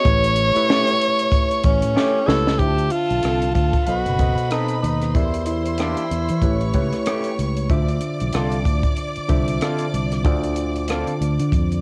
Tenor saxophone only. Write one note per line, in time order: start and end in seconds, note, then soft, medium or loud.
0.00 1.64 C#5 loud
1.65 2.29 C#4 medium
2.27 2.60 A4 loud
2.59 2.93 G4 medium
2.92 3.54 F4 medium
3.54 3.86 F4 medium
3.86 3.97 F4 medium
3.97 4.52 F#4 medium
4.51 4.81 D#4 medium
4.82 5.16 D#4 medium
5.15 5.45 E4 medium
5.46 7.34 E4 medium